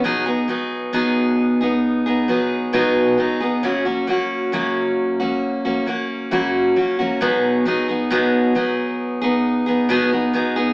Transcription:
X:1
M:4/4
L:1/16
Q:1/4=67
K:B
V:1 name="Steel-string acoustic guitar"
[B,,F,B,DG] [B,DG] [F,B,DG]2 [B,,F,B,DG]3 [B,DG]2 [B,DG] [F,B,DG]2 [B,,F,B,DG]2 [F,B,DG] [B,DG] | [F,,C,F,A,CF] [F,A,CF] [F,A,CF]2 [F,,C,F,A,CF]3 [F,A,CF]2 [F,A,CF] [F,A,CF]2 [F,,C,F,A,CF]2 [F,A,CF] [F,A,CF] | [B,,F,B,DG]2 [F,B,DG] [B,DG] [B,,F,B,DG]2 [F,B,DG]3 [B,DG]2 [B,DG] [B,,F,B,DG] [B,DG] [F,B,DG] [B,DG] |]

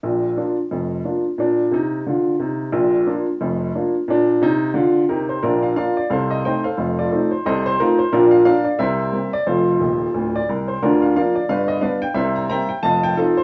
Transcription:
X:1
M:4/4
L:1/8
Q:"Swing" 1/4=178
K:Bb
V:1 name="Upright piano"
z8 | z8 | z8 | z6 [EGB] c |
[DFB] f [Bdf] d [Acf] e [ceg] [Acf]- | [Acf] [FAd]2 c [Ace] c [EFB] c | [DFB] f [Bdf] d [Bc=e]3 d | [FAc]4- [FAc] d B c |
[DFB] f [Bdf] d [=Bdf] e [Bdf] g | [Bc=e] b [egb] g [_efa] g [EFA] c |]
V:2 name="Upright piano" clef=bass
[B,,,B,,]2 [B,DF]2 [F,,,F,,]2 [B,DF]2 | [B,,D]2 [C,E]2 [D,F]2 [C,E]2 | [B,,,B,,]2 [B,DF]2 [F,,,F,,]2 [B,DF]2 | [B,,D]2 [C,E]2 [D,F]2 C,2 |
[B,,,B,,]2 [B,DF]2 [C,,C,]2 [A,CE]2 | [F,,,F,,]2 [A,CE]2 [C,,C,]2 [A,C]2 | [B,,,B,,]2 [B,D]2 [C,,C,]2 [G,B,C]2 | [F,,,F,,]2 [E,,,E,,]2 [D,,,D,,]2 C,,2 |
[D,,D,]2 [F,B,D]2 [G,,,G,,]2 [G,=B,D]2 | [C,,C,]2 [G,B,C]2 [F,,,F,,]2 [F,C]2 |]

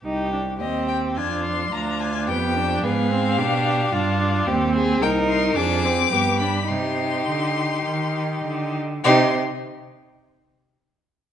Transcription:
X:1
M:4/4
L:1/8
Q:1/4=106
K:Cm
V:1 name="Violin"
z2 e g a c' b a | g2 f6 | z2 g c' d'3 =b | c'6- c' z |
c' z6 z |]
V:2 name="Violin"
G2 G2 F2 F2 | G2 A2 G2 F2 | G A B2 A2 G2 | G6- G z |
G z6 z |]
V:3 name="Viola"
E D C2 D2 D2 | =B, D B, C D2 D2 | C2 E2 D C =B, D | E6- E z |
E z6 z |]
V:4 name="Cello" clef=bass
C,,2 E,,2 F,,2 D,,2 | F,,2 A,,2 =B,,2 G,,2 | E,,2 C,,2 F,,2 G,,2 | C,2 D,2 E,2 D,2 |
C, z6 z |]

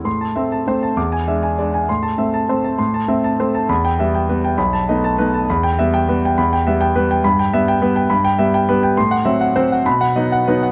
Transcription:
X:1
M:3/4
L:1/8
Q:1/4=201
K:Am
V:1 name="Grand piano"
c' a e a c a | d' ^g e g d g | c' a e a c a | c' a e a c a |
b g e g B g | b a ^d a B a | b g e g B g | b g e g B g |
[K:Em] b g e g B g | b g e g B g | c' f e f c f | b f ^d f B f |]
V:2 name="Grand piano"
A,,2 [A,C]2 [A,C]2 | E,,2 [^G,D]2 [G,D]2 | A,,2 [A,C]2 [A,C]2 | A,,2 [A,C]2 [A,C]2 |
E,,2 [G,B,]2 [G,B,]2 | B,,,2 [A,B,^D]2 [A,B,D]2 | E,,2 [G,B,]2 [G,B,]2 | E,,2 [G,B,]2 [G,B,]2 |
[K:Em] G,,2 [G,B,]2 [G,B,]2 | G,,2 [G,B,]2 [G,B,]2 | A,,2 [F,C]2 [F,C]2 | B,,2 [F,B,^D]2 [F,B,D]2 |]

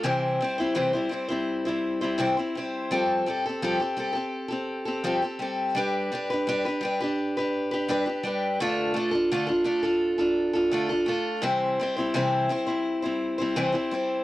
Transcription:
X:1
M:4/4
L:1/16
Q:1/4=84
K:C
V:1 name="Steel-string acoustic guitar"
[C,E,G,CEc]2 [G,CEc] [G,CEc] [C,E,G,CEc] [G,CEc] [G,CEc] [G,CEc]2 [G,CEc]2 [G,CEc] [C,E,G,CEc] [G,CEc] [G,CEc]2 | [F,G,CGA]2 [G,CGA] [CGA] [F,G,CGA] [CGA] [G,CGA] [CGA]2 [CGA]2 [CGA] [F,G,CGA] [CGA] [G,CGA]2 | [G,DGB]2 [G,DGB] [DGB] [G,DGB] [DGB] [G,DGB] [DGB]2 [DGB]2 [DGB] [G,DGB] [DGB] [G,DGB]2 | [D,A,DFA]2 [A,DFA] [DFA] [D,A,DFA] [DFA] [A,DFA] [DFA]2 [DFA]2 [DFA] [D,A,DFA] [DFA] [A,DFA]2 |
[C,E,G,CEc]2 [G,CEc] [G,CEc] [C,E,G,CEc]2 [G,CEc] [G,CEc]2 [G,CEc]2 [G,CEc] [C,E,G,CEc] [G,CEc] [G,CEc]2 |]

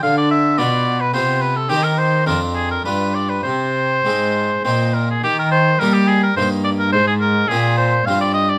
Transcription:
X:1
M:3/4
L:1/16
Q:1/4=106
K:Cm
V:1 name="Oboe"
f d =e2 d3 =B c2 B =A | G B c2 B2 A B =B2 d B | c8 c2 B A | [K:Eb] G B c2 B G A B c2 d B |
c A B2 A2 c2 f d e d |]
V:2 name="Harpsichord"
D,4 [=B,,=B,F]4 [C,B,F]4 | [E,CEG]4 [F,,CDF]4 [G,,DF]4 | C,4 [A,,CE]4 [B,,CE]4 | [K:Eb] E,4 [G,B,E]4 [G,,B,E]4 |
A,,4 [B,,CF]4 [G,,CF]4 |]
V:3 name="Cello" clef=bass
D,4 =B,,4 C,4 | E,4 F,,4 G,,4 | C,4 A,,4 B,,4 | [K:Eb] E,4 G,4 G,,4 |
A,,4 B,,4 G,,4 |]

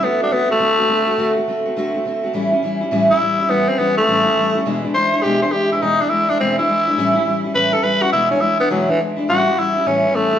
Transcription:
X:1
M:4/4
L:1/8
Q:"Swing" 1/4=208
K:Amix
V:1 name="Tenor saxophone"
B, D B, A,4- A,- | A, z6 z | z4 z E3 | B, =C B, A,4- A, |
z2 =c2 G c G E | ^D =D E D =C E3- | E3 z B A B F | E C E B, F, E, z2 |
F2 E2 C2 A,2 |]
V:2 name="Steel-string acoustic guitar"
[D,A,=CF] [A,CF] [D,A,CF] [A,CF] [D,A,C] [A,CF] [D,A,CF] [A,CF] | [D,A,=CF] [A,CF] [D,A,CF] [A,CF] [D,A,CF] [A,CF] [D,A,CF] [A,CF] | [A,,E,G,CE] [G,CE] [E,G,CE] [G,CE] [A,,E,G,CE] [CE] [E,G,CE] [G,CE] | [A,,E,G,CE] [G,CE] [E,G,CE] [G,CE] [A,,E,G,CE] [G,CE] [E,G,CE] [G,CE] |
[E,,B,,E,^G,DE] [E,G,DE] [E,G,DE] [E,G,DE] [E,,B,,E,G,DE] [E,G,DE] [E,G,DE] [E,G,DE] | [E,,B,,E,^G,DE] [E,G,DE] [E,G,DE] [E,G,DE] [E,,B,,E,G,DE] [E,G,DE] [E,G,DE] [E,G,DE] | [A,,E,G,CE] [G,CE] [E,G,CE] [G,CE] [A,,E,G,CE] [G,CE] [E,G,CE] [G,CE] | [E,,B,,E,^G,DE] [E,G,DE] [E,G,DE] [E,G,DE] [E,,B,,E,G,DE] [E,G,DE] [E,G,DE] [E,G,DE] |
[A,,E,G,CE] [G,CE] [E,G,CE] [G,CE] [A,,E,G,CE] [G,CE] [E,G,CE] [G,CE] |]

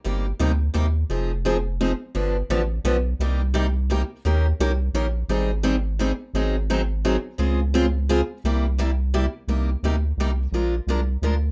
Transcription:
X:1
M:3/4
L:1/16
Q:"Swing" 1/4=172
K:Cm
V:1 name="Steel-string acoustic guitar"
[C,G,B,EG]2 z2 [C,G,B,EG] z3 [C,G,B,EG] z3 | [K:Fm] [F,CEA]2 z2 [F,CEA] z3 [F,CEA] z3 | [=D,F,=B,=DG]2 z2 [D,F,B,DG] z3 [D,F,B,DG] z3 | [C,G,B,EG]2 z2 [C,G,B,EG] z3 [C,G,B,EG] z3 |
[E,B,DGB]2 z2 [E,B,DGB] z3 [E,B,DGB] z3 | [E,G,CEA]2 z2 [E,G,CEA] z3 [E,G,CEA] z3 | [E,_G,CEA]2 z2 [E,G,CEA] z3 [E,G,CEA] z3 | [D,A,CFA]2 z2 [D,A,CFA] z3 [D,A,CFA] z3 |
[C,G,B,=EG]2 z2 [C,G,B,EG] z3 [C,G,B,EG] z3 | [K:Cm] [C,G,B,EG]2 z2 [C,G,B,EG] z3 [C,G,B,EG] z3 | [F,A,DFB]2 z2 [F,A,DFB] z3 [F,A,DFB] z3 |]
V:2 name="Analog synth bass" clef=bass
G,,,4 D,,4 E,,4 | [K:Fm] F,,,12 | G,,,4 =A,,,4 =B,,,4 | C,,12 |
E,,4 C,,4 B,,,4 | A,,,12 | A,,,12 | D,,12 |
C,,12 | [K:Cm] C,,4 D,,4 C,,4 | B,,,4 C,,4 D,,4 |]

